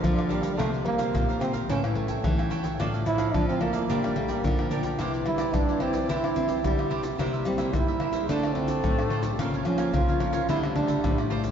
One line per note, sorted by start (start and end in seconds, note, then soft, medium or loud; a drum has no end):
0.00 0.61 D3 loud
0.00 0.31 F3 medium
0.00 0.27 A#3 medium
0.00 0.27 D4 medium
0.00 0.16 A#4 medium
0.00 0.15 D5 medium
0.00 0.15 F5 medium
0.00 pandeiro medium
0.00 tamborim medium
0.00 shaker medium
0.00 surdo loud
0.04 0.29 F3 medium
0.16 0.29 A#4 soft
0.16 0.29 D5 soft
0.16 0.30 F5 soft
0.16 pandeiro soft
0.16 tamborim medium
0.16 shaker soft
0.29 0.47 F3 medium
0.29 0.57 G3 medium
0.29 0.48 A#3 medium
0.29 0.43 D4 medium
0.29 0.48 D4 medium
0.29 0.43 A#4 medium
0.29 0.42 D5 medium
0.29 0.41 F5 medium
0.29 pandeiro medium
0.29 shaker medium
0.29 surdo soft
0.42 0.57 A#4 soft
0.42 0.57 D5 soft
0.42 0.56 F5 soft
0.42 pandeiro medium
0.42 shaker medium
0.42 surdo soft
0.57 1.11 C3 medium
0.57 1.73 C3 loud
0.57 0.96 G3 medium
0.57 0.71 A3 medium
0.57 0.96 A#3 medium
0.57 0.71 F4 medium
0.57 0.97 F4 medium
0.57 0.71 A#4 medium
0.57 0.72 C5 medium
0.57 0.72 F5 medium
0.57 pandeiro medium
0.57 tamborim medium
0.57 shaker medium
0.57 surdo medium
0.73 0.84 A#4 soft
0.73 0.84 C5 soft
0.73 0.84 F5 medium
0.73 pandeiro soft
0.73 shaker soft
0.85 1.09 G3 medium
0.85 1.37 A#3 loud
0.85 muted cavaquinho stroke soft
0.85 pandeiro soft
0.85 tamborim medium
0.98 1.36 G3 medium
0.98 1.36 A#3 medium
0.98 1.36 F4 medium
0.98 1.27 A#4 medium
0.98 1.26 C5 medium
0.98 1.26 F5 medium
0.98 pandeiro medium
0.98 tamborim medium
0.98 shaker medium
1.15 1.61 A#2 medium
1.15 pandeiro medium
1.15 tamborim medium
1.15 shaker medium
1.15 surdo loud
1.29 1.40 A#4 soft
1.29 1.41 C5 soft
1.29 1.41 F5 soft
1.29 pandeiro soft
1.29 shaker soft
1.40 1.65 G3 medium
1.40 1.65 A#3 medium
1.40 1.53 C4 medium
1.40 1.54 F4 soft
1.40 1.65 F4 medium
1.40 1.54 A#4 medium
1.40 1.53 C5 medium
1.40 1.52 F5 medium
1.40 pandeiro medium
1.40 tamborim medium
1.40 shaker medium
1.53 1.68 A#4 medium
1.53 1.67 C5 medium
1.53 1.67 F5 medium
1.53 pandeiro medium
1.53 shaker medium
1.53 surdo soft
1.69 2.22 A2 medium
1.69 2.53 E3 medium
1.69 1.78 G3 medium
1.69 1.82 C#4 medium
1.69 1.78 C#4 medium
1.69 1.82 E4 medium
1.69 1.79 E4 medium
1.69 1.82 A4 medium
1.69 1.83 C#5 medium
1.69 1.83 G5 medium
1.69 pandeiro medium
1.69 shaker medium
1.69 surdo medium
1.84 2.21 G3 medium
1.84 2.21 C#4 medium
1.84 2.21 E4 medium
1.84 2.09 A4 soft
1.84 2.08 C#5 soft
1.84 2.07 G5 medium
1.84 pandeiro soft
1.84 tamborim medium
1.84 shaker soft
1.95 2.47 A3 medium
1.95 2.20 A3 medium
1.95 pandeiro medium
1.95 surdo soft
2.08 2.37 A4 medium
2.08 2.36 C#5 medium
2.08 2.36 G5 medium
2.08 pandeiro medium
2.08 shaker medium
2.08 surdo soft
2.24 2.77 E3 medium
2.24 2.60 G3 medium
2.24 2.60 C#4 medium
2.24 2.60 E4 medium
2.24 pandeiro medium
2.24 tamborim medium
2.24 shaker medium
2.24 surdo loud
2.38 2.50 A4 soft
2.38 2.50 C#5 soft
2.38 2.51 G5 soft
2.38 pandeiro soft
2.38 tamborim medium
2.38 shaker soft
2.50 2.64 E4 medium
2.50 2.64 A4 medium
2.50 2.63 C#5 medium
2.50 2.62 G5 medium
2.50 pandeiro medium
2.50 shaker medium
2.63 2.78 A4 soft
2.63 2.78 C#5 soft
2.63 2.77 G5 soft
2.63 pandeiro medium
2.63 shaker medium
2.63 surdo soft
2.79 3.32 A2 medium
2.79 3.05 F3 medium
2.79 3.93 F3 loud
2.79 3.05 A3 medium
2.79 2.92 D4 medium
2.79 3.06 D4 medium
2.79 2.92 A4 medium
2.79 2.92 D5 medium
2.79 2.92 F5 medium
2.79 pandeiro medium
2.79 tamborim medium
2.79 shaker medium
2.79 surdo medium
2.94 3.05 A4 soft
2.94 3.05 D5 medium
2.94 3.05 F5 medium
2.94 pandeiro soft
2.94 shaker soft
3.05 3.30 A2 medium
3.05 3.36 E4 loud
3.05 muted cavaquinho stroke soft
3.05 pandeiro medium
3.05 tamborim medium
3.05 shaker medium
3.18 3.56 F3 medium
3.18 3.56 A3 medium
3.18 3.57 D4 medium
3.18 3.47 A4 medium
3.18 3.46 D5 medium
3.18 3.46 F5 medium
3.18 pandeiro medium
3.18 tamborim medium
3.18 shaker medium
3.34 3.87 A2 medium
3.34 3.81 F3 medium
3.34 3.48 D4 loud
3.34 pandeiro medium
3.34 tamborim medium
3.34 shaker medium
3.34 surdo loud
3.49 3.61 C4 medium
3.49 3.60 A4 soft
3.49 3.61 D5 soft
3.49 3.61 F5 soft
3.49 pandeiro soft
3.49 shaker soft
3.61 3.87 F3 medium
3.61 3.87 A3 medium
3.61 4.19 A#3 loud
3.61 3.74 D4 medium
3.61 3.87 D4 medium
3.61 3.74 A4 medium
3.61 3.73 D5 soft
3.61 3.72 F5 medium
3.61 pandeiro medium
3.61 tamborim medium
3.73 3.88 A4 medium
3.73 3.87 D5 medium
3.73 3.87 F5 medium
3.73 pandeiro medium
3.73 shaker medium
3.73 surdo soft
3.89 4.42 A#2 medium
3.89 3.99 G3 medium
3.89 4.47 G3 loud
3.89 3.99 A#3 medium
3.89 4.02 D4 medium
3.89 3.99 D4 medium
3.89 4.02 A#4 medium
3.89 4.03 D5 medium
3.89 4.02 G5 medium
3.89 pandeiro medium
3.89 shaker medium
3.89 surdo medium
4.03 4.40 G3 medium
4.03 4.41 A#3 medium
4.03 4.41 D4 medium
4.03 4.29 A#4 soft
4.03 4.28 D5 soft
4.03 4.27 G5 soft
4.03 pandeiro soft
4.03 tamborim medium
4.03 shaker soft
4.16 4.32 A3 medium
4.16 4.40 A#3 medium
4.16 pandeiro medium
4.16 surdo soft
4.28 4.72 A#3 medium
4.28 4.57 A#4 medium
4.28 4.56 D5 medium
4.28 4.56 G5 medium
4.28 pandeiro medium
4.28 shaker medium
4.28 surdo soft
4.44 4.97 A#2 medium
4.44 4.91 D3 loud
4.44 4.99 F3 loud
4.44 4.95 G3 medium
4.44 4.95 A#3 medium
4.44 4.95 D4 medium
4.44 pandeiro medium
4.44 tamborim medium
4.44 shaker medium
4.44 surdo loud
4.59 4.70 A#4 soft
4.59 4.71 D5 soft
4.59 4.71 G5 soft
4.59 pandeiro soft
4.59 tamborim medium
4.59 shaker soft
4.71 4.84 D4 medium
4.71 4.84 A#4 medium
4.71 4.84 D5 medium
4.71 4.83 G5 medium
4.71 pandeiro medium
4.71 shaker medium
4.83 4.98 A#4 soft
4.83 4.98 D5 soft
4.83 4.97 G5 medium
4.83 pandeiro medium
4.83 shaker medium
4.83 surdo soft
4.99 5.51 C3 medium
4.99 6.61 E3 loud
4.99 5.36 G3 medium
4.99 5.36 D4 medium
4.99 5.12 E4 medium
4.99 5.36 E4 medium
4.99 5.13 G4 medium
4.99 5.13 C5 medium
4.99 5.13 D5 medium
4.99 pandeiro medium
4.99 tamborim medium
4.99 shaker medium
4.99 surdo medium
5.14 5.26 G4 soft
5.14 5.26 C5 soft
5.14 5.26 D5 medium
5.14 pandeiro soft
5.14 shaker soft
5.26 5.50 G3 loud
5.26 5.57 E4 loud
5.26 muted cavaquinho stroke soft
5.26 pandeiro medium
5.26 tamborim medium
5.38 5.54 G3 medium
5.38 5.77 D4 medium
5.38 5.77 E4 medium
5.38 5.67 G4 medium
5.38 5.67 C5 medium
5.38 5.66 D5 medium
5.38 pandeiro medium
5.38 tamborim medium
5.38 shaker medium
5.54 5.80 G3 medium
5.54 5.83 D4 medium
5.54 pandeiro medium
5.54 tamborim medium
5.54 shaker medium
5.54 surdo loud
5.69 5.80 G4 soft
5.69 5.80 C5 soft
5.69 5.81 D5 medium
5.69 pandeiro soft
5.69 shaker soft
5.80 6.05 G3 medium
5.80 6.09 C4 medium
5.80 6.05 D4 medium
5.80 5.94 E4 soft
5.80 6.05 E4 medium
5.80 5.94 G4 medium
5.80 5.93 C5 medium
5.80 5.92 D5 medium
5.80 pandeiro medium
5.80 tamborim medium
5.93 6.08 G4 medium
5.93 6.08 C5 medium
5.93 6.07 D5 medium
5.93 pandeiro medium
5.93 shaker medium
5.93 surdo soft
6.09 6.62 C3 medium
6.09 6.18 G3 medium
6.09 6.18 D4 medium
6.09 6.22 E4 medium
6.09 6.88 E4 loud
6.09 6.18 E4 medium
6.09 6.22 G4 medium
6.09 6.22 C5 medium
6.09 6.23 D5 medium
6.09 pandeiro medium
6.09 shaker medium
6.09 surdo medium
6.23 6.60 G3 medium
6.23 6.60 D4 medium
6.23 6.61 E4 medium
6.23 6.49 G4 soft
6.23 6.48 C5 soft
6.23 6.46 D5 soft
6.23 pandeiro soft
6.23 tamborim medium
6.23 shaker soft
6.36 6.60 C4 medium
6.36 pandeiro medium
6.36 shaker medium
6.36 surdo soft
6.48 6.77 G4 medium
6.48 6.76 C5 medium
6.48 6.75 D5 medium
6.48 pandeiro medium
6.48 shaker medium
6.48 surdo soft
6.64 6.90 D3 medium
6.64 7.17 G3 medium
6.64 7.16 G3 loud
6.64 7.00 D4 medium
6.64 7.00 E4 medium
6.64 pandeiro medium
6.64 tamborim medium
6.64 shaker medium
6.64 surdo loud
6.78 6.90 G4 soft
6.78 6.90 C5 soft
6.78 6.91 D5 soft
6.78 pandeiro soft
6.78 tamborim medium
6.78 shaker soft
6.90 7.16 C3 medium
6.90 7.03 E4 medium
6.90 7.03 G4 medium
6.90 7.02 C5 medium
6.90 7.01 D5 medium
6.90 pandeiro medium
7.03 7.18 G4 soft
7.03 7.17 C5 soft
7.03 7.17 D5 soft
7.03 pandeiro medium
7.03 shaker medium
7.03 surdo soft
7.18 7.71 C3 medium
7.18 7.56 G3 medium
7.18 7.99 G3 loud
7.18 7.56 A#3 medium
7.18 7.32 E4 medium
7.18 7.56 E4 medium
7.18 7.32 A#4 medium
7.18 7.32 C5 medium
7.18 7.32 E5 medium
7.18 pandeiro medium
7.18 tamborim medium
7.18 shaker medium
7.18 surdo medium
7.33 7.45 A#4 soft
7.33 7.45 C5 soft
7.33 7.45 E5 medium
7.33 pandeiro soft
7.33 shaker soft
7.45 7.70 G3 medium
7.45 7.77 C4 medium
7.45 muted cavaquinho stroke soft
7.45 pandeiro medium
7.45 tamborim medium
7.45 shaker medium
7.58 7.96 G3 medium
7.58 7.96 A#3 medium
7.58 7.97 E4 medium
7.58 7.87 A#4 medium
7.58 7.87 C5 medium
7.58 7.86 E5 medium
7.58 pandeiro medium
7.58 tamborim medium
7.58 shaker medium
7.73 8.26 G2 medium
7.73 8.21 G3 medium
7.73 8.29 E4 loud
7.73 pandeiro medium
7.73 tamborim medium
7.73 shaker medium
7.73 surdo loud
7.88 8.00 A#4 soft
7.88 8.01 C5 soft
7.88 8.01 E5 soft
7.88 pandeiro soft
7.88 shaker soft
8.00 8.17 G3 medium
8.00 8.18 A#3 medium
8.00 8.14 E4 medium
8.00 8.18 E4 medium
8.00 8.14 A#4 medium
8.00 8.13 C5 medium
8.00 8.12 E5 medium
8.00 pandeiro medium
8.00 tamborim medium
8.13 8.28 A#4 medium
8.13 8.28 C5 medium
8.13 8.27 E5 medium
8.13 pandeiro medium
8.13 shaker medium
8.13 surdo soft
8.22 8.30 G#3 medium
8.29 8.82 D3 medium
8.29 9.35 A3 loud
8.29 8.39 A3 medium
8.29 8.39 C4 medium
8.29 8.57 D4 medium
8.29 8.42 F4 medium
8.29 8.39 F4 medium
8.29 8.43 A4 medium
8.29 8.43 C5 medium
8.29 8.43 D5 medium
8.29 pandeiro medium
8.29 shaker medium
8.29 surdo medium
8.43 8.80 A3 medium
8.43 8.81 C4 medium
8.43 8.81 F4 medium
8.43 8.70 A4 soft
8.43 8.69 C5 soft
8.43 8.68 D5 soft
8.43 pandeiro soft
8.43 tamborim medium
8.43 shaker soft
8.55 8.79 D3 medium
8.55 9.11 C4 medium
8.55 pandeiro medium
8.55 surdo soft
8.68 8.97 A4 medium
8.68 8.97 C5 medium
8.68 8.96 D5 medium
8.68 pandeiro medium
8.68 shaker medium
8.68 surdo soft
8.84 9.37 A2 medium
8.84 9.35 A3 medium
8.84 9.35 C4 medium
8.84 9.35 F4 medium
8.84 pandeiro medium
8.84 tamborim medium
8.84 shaker medium
8.84 surdo loud
8.99 9.11 A4 soft
8.99 9.11 C5 soft
8.99 9.11 D5 soft
8.99 pandeiro soft
8.99 tamborim medium
8.99 shaker soft
9.10 9.24 F4 medium
9.10 9.24 A4 medium
9.10 9.24 C5 medium
9.10 9.23 D5 medium
9.10 pandeiro medium
9.23 9.39 A4 soft
9.23 9.38 C5 soft
9.23 9.38 D5 medium
9.23 pandeiro medium
9.23 shaker medium
9.23 surdo soft
9.33 9.41 G3 medium
9.39 9.92 C#3 medium
9.39 10.51 F3 loud
9.39 9.76 F3 medium
9.39 9.76 A#3 medium
9.39 9.52 F4 medium
9.39 9.77 F4 medium
9.39 9.53 A#4 medium
9.39 9.53 C#5 medium
9.39 9.53 F5 medium
9.39 pandeiro medium
9.39 tamborim medium
9.39 shaker medium
9.39 surdo medium
9.54 9.65 A#4 soft
9.54 9.65 C#5 soft
9.54 9.66 F5 medium
9.54 pandeiro soft
9.54 shaker soft
9.65 9.89 F3 medium
9.65 9.96 C#4 medium
9.65 muted cavaquinho stroke soft
9.65 pandeiro medium
9.65 tamborim medium
9.65 shaker medium
9.78 10.17 F3 medium
9.78 10.17 A#3 medium
9.78 10.17 F4 medium
9.78 10.07 A#4 medium
9.78 10.06 C#5 medium
9.78 10.06 F5 medium
9.78 pandeiro medium
9.78 tamborim medium
9.78 shaker medium
9.94 10.47 C#3 medium
9.94 10.49 F4 loud
9.94 pandeiro medium
9.94 tamborim medium
9.94 shaker medium
9.94 surdo loud
10.08 10.19 A#4 soft
10.08 10.20 C#5 soft
10.08 10.20 F5 medium
10.08 pandeiro soft
10.08 shaker soft
10.20 10.39 F3 medium
10.20 10.39 A#3 medium
10.20 10.33 F4 soft
10.20 10.39 F4 medium
10.20 10.34 A#4 medium
10.20 10.32 C#5 soft
10.20 10.31 F5 medium
10.20 pandeiro medium
10.20 tamborim medium
10.33 10.48 A#4 medium
10.33 10.47 C#5 medium
10.33 10.47 F5 medium
10.33 pandeiro medium
10.33 shaker medium
10.33 surdo soft
10.49 11.01 D3 medium
10.49 11.51 G3 loud
10.49 10.57 A3 medium
10.49 10.58 C4 medium
10.49 10.62 E4 loud
10.49 10.62 F4 medium
10.49 10.58 F4 medium
10.49 10.62 A4 medium
10.49 10.62 C5 medium
10.49 10.61 D5 medium
10.49 pandeiro medium
10.49 shaker medium
10.49 surdo medium
10.63 10.73 A3 medium
10.63 10.73 C4 medium
10.63 10.73 F4 medium
10.63 10.88 A4 soft
10.63 10.87 C5 soft
10.63 10.86 D5 soft
10.63 pandeiro soft
10.63 tamborim medium
10.63 shaker soft
10.75 11.00 D3 medium
10.75 10.93 A3 medium
10.75 10.93 C4 medium
10.75 11.28 D4 medium
10.75 10.93 F4 medium
10.75 pandeiro medium
10.75 surdo soft
10.87 11.17 A4 medium
10.87 11.16 C5 medium
10.87 11.15 D5 medium
10.87 pandeiro medium
10.87 shaker medium
10.87 surdo soft
11.04 11.51 A2 medium
11.04 11.51 A3 medium
11.04 11.51 C4 medium
11.04 11.51 F4 medium
11.04 pandeiro medium
11.04 tamborim medium
11.04 shaker medium
11.04 surdo loud
11.18 11.29 A4 soft
11.18 11.30 C5 soft
11.18 11.31 D5 soft
11.18 pandeiro soft
11.18 tamborim medium
11.18 shaker soft
11.30 11.44 F4 medium
11.30 11.44 A4 medium
11.30 11.43 C5 medium
11.30 11.42 D5 medium
11.30 pandeiro medium
11.44 11.51 A4 soft
11.44 11.51 C5 soft
11.44 pandeiro medium
11.44 shaker medium
11.44 surdo soft